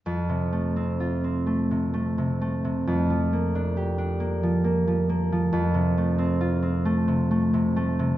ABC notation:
X:1
M:6/8
L:1/16
Q:3/8=45
K:F
V:1 name="Harp"
F,, C, A, C F C A, C, A, C, A, C, | F,, F, B, D G D B, F, B, F, B, F, | F,, C, A, C F C A, C, A, C, A, C, |]